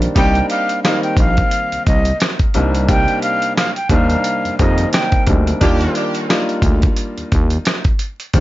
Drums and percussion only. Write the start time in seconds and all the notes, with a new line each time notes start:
0.02 closed hi-hat
0.16 kick, closed hi-hat
0.35 closed hi-hat
0.50 closed hi-hat
0.69 closed hi-hat
0.85 cross-stick, snare, closed hi-hat
1.03 closed hi-hat
1.17 kick, closed hi-hat
1.37 kick, closed hi-hat
1.51 closed hi-hat
1.72 closed hi-hat
1.87 kick, closed hi-hat
2.05 closed hi-hat
2.20 cross-stick, snare, closed hi-hat
2.39 kick, closed hi-hat
2.54 closed hi-hat
2.75 closed hi-hat
2.89 kick, closed hi-hat
3.08 closed hi-hat
3.22 closed hi-hat
3.42 closed hi-hat
3.57 cross-stick, snare, closed hi-hat
3.76 closed hi-hat
3.89 kick, closed hi-hat
4.10 closed hi-hat
4.24 closed hi-hat
4.45 closed hi-hat
4.59 kick, closed hi-hat
4.78 closed hi-hat
4.93 cross-stick, snare, closed hi-hat
5.12 kick, closed hi-hat
5.27 kick, closed hi-hat
5.47 closed hi-hat
5.61 kick, closed hi-hat
5.81 closed hi-hat
5.95 closed hi-hat
6.15 closed hi-hat
6.30 cross-stick, snare, closed hi-hat
6.49 closed hi-hat
6.62 kick, closed hi-hat
6.82 kick, closed hi-hat
6.96 closed hi-hat
7.18 closed hi-hat
7.32 kick, closed hi-hat
7.50 closed hi-hat
7.65 cross-stick, snare, closed hi-hat
7.84 kick, closed hi-hat
7.99 closed hi-hat
8.20 closed hi-hat
8.34 kick, closed hi-hat